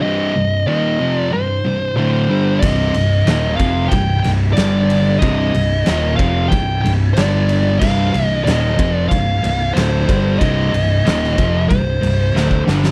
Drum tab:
CC |----------------|x---------------|----------------|x---------------|
RD |----------------|--x-x-x-x-x-x-x-|x-x-x-x-x-x-x-x-|--x-x-x-x-x-x-x-|
SD |----------------|----o-----o-o---|----o-------o---|----o-------o---|
BD |----------------|o-----o-o-------|o-----o-o-------|o-----o-o-----o-|

CC |----------------|
RD |x-x-x-x-x-x-----|
SD |----oo------o-oo|
BD |o-----o-o----o--|